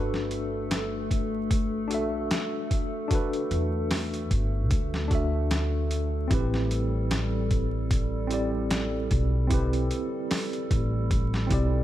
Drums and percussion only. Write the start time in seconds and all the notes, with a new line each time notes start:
0.14 snare
0.31 closed hi-hat
0.71 snare, closed hi-hat
1.11 kick, closed hi-hat
1.51 kick, closed hi-hat
1.91 closed hi-hat
2.31 snare, closed hi-hat
2.71 kick, closed hi-hat
3.11 kick, closed hi-hat
3.33 closed hi-hat
3.51 closed hi-hat
3.91 snare, open hi-hat
4.14 closed hi-hat
4.31 kick, closed hi-hat
4.71 kick, closed hi-hat
4.94 snare
5.11 kick, closed hi-hat
5.51 snare, closed hi-hat
5.91 closed hi-hat
6.31 kick, closed hi-hat
6.54 snare
6.71 closed hi-hat
7.11 snare, closed hi-hat
7.51 kick, closed hi-hat
7.91 kick, closed hi-hat
8.31 closed hi-hat
8.71 snare, closed hi-hat
9.11 kick, closed hi-hat
9.50 kick, closed hi-hat
9.73 closed hi-hat
9.91 closed hi-hat
10.31 snare, open hi-hat
10.53 closed hi-hat
10.71 kick, closed hi-hat
11.11 kick, closed hi-hat
11.34 snare
11.51 kick, closed hi-hat